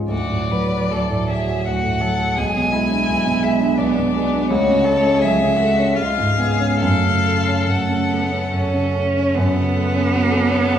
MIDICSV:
0, 0, Header, 1, 5, 480
1, 0, Start_track
1, 0, Key_signature, 3, "minor"
1, 0, Tempo, 806452
1, 68, Time_signature, 3, 2, 24, 8
1, 546, Tempo, 741656
1, 1026, Tempo, 707547
1, 3426, Tempo, 756620
1, 3906, Tempo, 854701
1, 5826, Tempo, 752823
1, 6729, End_track
2, 0, Start_track
2, 0, Title_t, "Violin"
2, 0, Program_c, 0, 40
2, 64, Note_on_c, 0, 74, 60
2, 761, Note_off_c, 0, 74, 0
2, 790, Note_on_c, 0, 76, 49
2, 1022, Note_on_c, 0, 78, 59
2, 1032, Note_off_c, 0, 76, 0
2, 1516, Note_on_c, 0, 80, 69
2, 1526, Note_off_c, 0, 78, 0
2, 2227, Note_on_c, 0, 76, 60
2, 2237, Note_off_c, 0, 80, 0
2, 2463, Note_on_c, 0, 74, 56
2, 2473, Note_off_c, 0, 76, 0
2, 2945, Note_off_c, 0, 74, 0
2, 2952, Note_on_c, 0, 73, 78
2, 3434, Note_on_c, 0, 76, 70
2, 3444, Note_off_c, 0, 73, 0
2, 3911, Note_on_c, 0, 77, 63
2, 3919, Note_off_c, 0, 76, 0
2, 4377, Note_off_c, 0, 77, 0
2, 4381, Note_on_c, 0, 77, 66
2, 4881, Note_on_c, 0, 78, 50
2, 4890, Note_off_c, 0, 77, 0
2, 5598, Note_off_c, 0, 78, 0
2, 5821, Note_on_c, 0, 78, 52
2, 6729, Note_off_c, 0, 78, 0
2, 6729, End_track
3, 0, Start_track
3, 0, Title_t, "Violin"
3, 0, Program_c, 1, 40
3, 62, Note_on_c, 1, 66, 43
3, 306, Note_on_c, 1, 71, 43
3, 315, Note_off_c, 1, 66, 0
3, 543, Note_on_c, 1, 69, 36
3, 552, Note_off_c, 1, 71, 0
3, 794, Note_on_c, 1, 68, 44
3, 803, Note_off_c, 1, 69, 0
3, 1018, Note_off_c, 1, 68, 0
3, 1022, Note_on_c, 1, 66, 40
3, 1261, Note_on_c, 1, 69, 44
3, 1271, Note_off_c, 1, 66, 0
3, 1495, Note_on_c, 1, 68, 45
3, 1505, Note_off_c, 1, 69, 0
3, 1744, Note_on_c, 1, 64, 46
3, 1754, Note_off_c, 1, 68, 0
3, 2462, Note_on_c, 1, 62, 38
3, 2472, Note_off_c, 1, 64, 0
3, 2945, Note_off_c, 1, 62, 0
3, 2949, Note_on_c, 1, 66, 50
3, 3186, Note_on_c, 1, 69, 59
3, 3196, Note_off_c, 1, 66, 0
3, 3415, Note_on_c, 1, 68, 52
3, 3426, Note_off_c, 1, 69, 0
3, 3655, Note_on_c, 1, 66, 54
3, 3664, Note_off_c, 1, 68, 0
3, 3907, Note_on_c, 1, 65, 51
3, 3915, Note_off_c, 1, 66, 0
3, 4131, Note_off_c, 1, 65, 0
3, 4135, Note_on_c, 1, 68, 50
3, 4376, Note_off_c, 1, 68, 0
3, 4382, Note_on_c, 1, 69, 50
3, 5573, Note_off_c, 1, 69, 0
3, 5813, Note_on_c, 1, 69, 43
3, 6729, Note_off_c, 1, 69, 0
3, 6729, End_track
4, 0, Start_track
4, 0, Title_t, "Cello"
4, 0, Program_c, 2, 42
4, 69, Note_on_c, 2, 54, 40
4, 1032, Note_on_c, 2, 57, 41
4, 1042, Note_off_c, 2, 54, 0
4, 1505, Note_off_c, 2, 57, 0
4, 1509, Note_on_c, 2, 56, 42
4, 2446, Note_off_c, 2, 56, 0
4, 2457, Note_on_c, 2, 59, 52
4, 2698, Note_off_c, 2, 59, 0
4, 2702, Note_on_c, 2, 59, 47
4, 2942, Note_on_c, 2, 57, 55
4, 2952, Note_off_c, 2, 59, 0
4, 3185, Note_on_c, 2, 56, 60
4, 3195, Note_off_c, 2, 57, 0
4, 3427, Note_on_c, 2, 54, 51
4, 3436, Note_off_c, 2, 56, 0
4, 3641, Note_off_c, 2, 54, 0
4, 3645, Note_on_c, 2, 56, 50
4, 4362, Note_off_c, 2, 56, 0
4, 4381, Note_on_c, 2, 57, 35
4, 4819, Note_off_c, 2, 57, 0
4, 4871, Note_on_c, 2, 57, 42
4, 5117, Note_on_c, 2, 59, 45
4, 5125, Note_off_c, 2, 57, 0
4, 5343, Note_off_c, 2, 59, 0
4, 5346, Note_on_c, 2, 61, 58
4, 5810, Note_on_c, 2, 59, 71
4, 5818, Note_off_c, 2, 61, 0
4, 6729, Note_off_c, 2, 59, 0
4, 6729, End_track
5, 0, Start_track
5, 0, Title_t, "Grand piano"
5, 0, Program_c, 3, 0
5, 0, Control_c, 3, 64, 127
5, 0, Note_on_c, 3, 37, 26
5, 0, Note_on_c, 3, 44, 27
5, 0, Note_on_c, 3, 56, 30
5, 0, Note_on_c, 3, 65, 33
5, 55, Note_on_c, 3, 38, 42
5, 68, Note_off_c, 3, 65, 0
5, 81, Control_c, 3, 64, 0
5, 82, Note_off_c, 3, 44, 0
5, 82, Note_off_c, 3, 56, 0
5, 87, Note_off_c, 3, 37, 0
5, 178, Note_on_c, 3, 45, 25
5, 206, Control_c, 3, 64, 127
5, 299, Note_on_c, 3, 54, 28
5, 377, Note_off_c, 3, 45, 0
5, 418, Note_on_c, 3, 66, 25
5, 494, Note_off_c, 3, 54, 0
5, 532, Note_off_c, 3, 38, 0
5, 541, Note_on_c, 3, 38, 34
5, 613, Note_off_c, 3, 66, 0
5, 664, Note_on_c, 3, 45, 30
5, 784, Note_on_c, 3, 54, 32
5, 859, Note_off_c, 3, 45, 0
5, 906, Note_on_c, 3, 66, 30
5, 976, Note_off_c, 3, 54, 0
5, 1014, Note_off_c, 3, 38, 0
5, 1024, Note_on_c, 3, 38, 34
5, 1098, Note_off_c, 3, 66, 0
5, 1144, Note_on_c, 3, 45, 27
5, 1258, Note_on_c, 3, 54, 36
5, 1340, Note_off_c, 3, 45, 0
5, 1384, Note_on_c, 3, 66, 35
5, 1456, Note_off_c, 3, 54, 0
5, 1493, Note_off_c, 3, 38, 0
5, 1506, Note_off_c, 3, 66, 0
5, 1511, Note_on_c, 3, 35, 48
5, 1521, Control_c, 3, 64, 0
5, 1635, Note_on_c, 3, 47, 31
5, 1638, Control_c, 3, 64, 127
5, 1754, Note_on_c, 3, 56, 28
5, 1820, Note_off_c, 3, 47, 0
5, 1873, Note_on_c, 3, 62, 31
5, 1939, Note_off_c, 3, 56, 0
5, 1991, Note_off_c, 3, 35, 0
5, 2001, Note_on_c, 3, 35, 42
5, 2059, Note_off_c, 3, 62, 0
5, 2113, Note_on_c, 3, 47, 35
5, 2228, Note_on_c, 3, 56, 40
5, 2300, Note_off_c, 3, 47, 0
5, 2345, Note_on_c, 3, 62, 38
5, 2418, Note_off_c, 3, 56, 0
5, 2463, Note_off_c, 3, 35, 0
5, 2473, Note_on_c, 3, 35, 36
5, 2538, Note_off_c, 3, 62, 0
5, 2600, Note_on_c, 3, 47, 34
5, 2719, Note_on_c, 3, 56, 40
5, 2786, Note_off_c, 3, 47, 0
5, 2841, Note_on_c, 3, 62, 41
5, 2905, Note_off_c, 3, 56, 0
5, 2936, Note_off_c, 3, 35, 0
5, 2953, Note_off_c, 3, 62, 0
5, 2956, Note_on_c, 3, 37, 53
5, 2959, Control_c, 3, 64, 0
5, 3064, Control_c, 3, 64, 127
5, 3085, Note_on_c, 3, 49, 35
5, 3197, Note_on_c, 3, 57, 39
5, 3265, Note_off_c, 3, 49, 0
5, 3319, Note_on_c, 3, 61, 38
5, 3383, Note_off_c, 3, 57, 0
5, 3437, Note_off_c, 3, 37, 0
5, 3447, Note_on_c, 3, 37, 41
5, 3501, Note_off_c, 3, 61, 0
5, 3561, Note_on_c, 3, 49, 38
5, 3679, Note_on_c, 3, 57, 43
5, 3741, Note_off_c, 3, 49, 0
5, 3801, Note_on_c, 3, 61, 41
5, 3865, Note_off_c, 3, 57, 0
5, 3902, Note_off_c, 3, 37, 0
5, 3914, Note_off_c, 3, 61, 0
5, 3916, Note_on_c, 3, 37, 41
5, 3917, Control_c, 3, 64, 0
5, 4018, Control_c, 3, 64, 127
5, 4035, Note_on_c, 3, 44, 29
5, 4148, Note_on_c, 3, 59, 35
5, 4217, Note_off_c, 3, 44, 0
5, 4269, Note_on_c, 3, 61, 33
5, 4338, Note_off_c, 3, 59, 0
5, 4374, Note_off_c, 3, 37, 0
5, 4388, Note_off_c, 3, 61, 0
5, 4394, Control_c, 3, 64, 0
5, 4394, Note_on_c, 3, 42, 49
5, 4504, Control_c, 3, 64, 127
5, 4521, Note_on_c, 3, 49, 26
5, 4637, Note_on_c, 3, 57, 30
5, 4713, Note_off_c, 3, 49, 0
5, 4762, Note_on_c, 3, 61, 26
5, 4831, Note_off_c, 3, 57, 0
5, 4862, Note_off_c, 3, 42, 0
5, 4871, Note_on_c, 3, 42, 35
5, 4953, Note_off_c, 3, 61, 0
5, 4994, Note_on_c, 3, 49, 27
5, 5115, Note_on_c, 3, 57, 33
5, 5187, Note_off_c, 3, 49, 0
5, 5233, Note_on_c, 3, 61, 28
5, 5306, Note_off_c, 3, 57, 0
5, 5341, Note_off_c, 3, 42, 0
5, 5350, Note_on_c, 3, 42, 28
5, 5425, Note_off_c, 3, 61, 0
5, 5468, Note_on_c, 3, 49, 25
5, 5595, Note_on_c, 3, 57, 29
5, 5665, Note_off_c, 3, 49, 0
5, 5709, Note_on_c, 3, 61, 31
5, 5781, Note_off_c, 3, 57, 0
5, 5807, Note_off_c, 3, 42, 0
5, 5821, Note_off_c, 3, 61, 0
5, 5827, Note_on_c, 3, 42, 55
5, 5835, Control_c, 3, 64, 0
5, 5948, Note_on_c, 3, 49, 34
5, 5953, Control_c, 3, 64, 127
5, 6067, Note_on_c, 3, 57, 37
5, 6140, Note_off_c, 3, 49, 0
5, 6192, Note_on_c, 3, 61, 37
5, 6261, Note_off_c, 3, 57, 0
5, 6308, Note_on_c, 3, 66, 40
5, 6384, Note_off_c, 3, 61, 0
5, 6428, Note_on_c, 3, 69, 42
5, 6501, Note_off_c, 3, 66, 0
5, 6550, Note_on_c, 3, 73, 45
5, 6619, Note_off_c, 3, 69, 0
5, 6678, Note_on_c, 3, 78, 41
5, 6729, Note_off_c, 3, 42, 0
5, 6729, Note_off_c, 3, 73, 0
5, 6729, Note_off_c, 3, 78, 0
5, 6729, End_track
0, 0, End_of_file